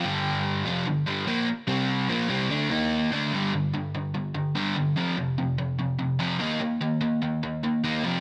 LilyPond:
\new Staff \with { instrumentName = "Overdriven electric guitar" } { \clef bass \time 4/4 \key g \minor \tempo 4 = 146 <g, d g>4. <f, c f>8 <g, d>8 <g, d g>8 <bes, f bes>8 r8 | <c g c'>4 <bes, f bes>8 <c g c'>8 <d a d'>8 <ees bes ees'>4 <d a d'>8 | <g, d g>8 <g, d>8 <g, d>8 <g, d>8 <g, d>8 <g, d>8 <g, d g>8 <g, d>8 | <f, c f>8 <f, c>8 <f, c>8 <f, c>8 <f, c>8 <f, c>8 <f, c f>8 <ees bes ees'>8 |
<ees bes>8 <ees bes>8 <ees bes>8 <ees bes>8 <ees bes>8 <ees bes>8 <ees bes ees'>8 <f, c f>8 | }